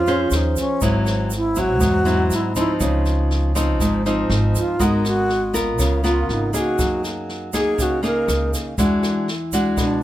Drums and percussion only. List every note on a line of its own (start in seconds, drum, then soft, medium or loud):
0.06 snare soft
0.06 shaker soft
0.31 cross-stick medium
0.31 snare soft
0.31 shaker medium
0.56 kick soft
0.56 snare soft
0.56 shaker medium
0.81 kick medium
0.81 snare soft
0.81 shaker medium
1.06 cross-stick soft
1.06 snare soft
1.06 shaker soft
1.30 snare soft
1.30 shaker soft
1.56 kick soft
1.56 snare soft
1.56 shaker medium
1.80 kick medium
1.80 cross-stick medium
1.80 snare soft
1.80 shaker medium
2.06 snare soft
2.06 shaker soft
2.31 snare soft
2.31 shaker soft
2.55 kick soft
2.55 snare soft
2.55 shaker medium
2.80 kick medium
2.80 cross-stick medium
2.80 snare soft
2.80 shaker medium
3.05 snare soft
3.05 shaker soft
3.31 snare soft
3.55 kick soft
3.55 cross-stick medium
3.55 snare soft
3.55 shaker medium
3.80 kick medium
3.80 snare soft
3.80 shaker medium
4.06 snare soft
4.06 shaker soft
4.30 cross-stick medium
4.30 snare soft
4.55 kick soft
4.55 snare soft
4.55 shaker medium
4.80 kick medium
4.80 snare soft
4.80 shaker medium
5.05 cross-stick soft
5.05 snare soft
5.05 shaker soft
5.29 snare soft
5.54 kick soft
5.54 snare soft
5.54 shaker medium
5.79 kick medium
5.79 cross-stick medium
5.79 snare soft
5.79 shaker medium
6.04 snare soft
6.04 shaker soft
6.29 snare soft
6.54 kick soft
6.54 snare soft
6.54 shaker medium
6.79 kick medium
6.79 cross-stick soft
6.79 snare soft
6.79 shaker medium
7.04 snare soft
7.04 shaker soft
7.29 snare soft
7.53 kick soft
7.53 cross-stick medium
7.53 snare soft
7.53 shaker medium
7.78 kick medium
7.78 snare soft
7.78 shaker medium
8.03 snare soft
8.03 shaker soft
8.28 cross-stick medium
8.28 snare soft
8.28 shaker medium
8.53 kick soft
8.53 snare soft
8.53 shaker medium
8.78 kick medium
8.78 snare soft
8.78 shaker medium
9.03 cross-stick medium
9.03 snare soft
9.03 shaker soft
9.28 snare soft
9.52 kick soft
9.52 snare soft
9.52 shaker medium
9.77 kick medium
9.77 cross-stick medium
9.77 snare soft
9.77 shaker medium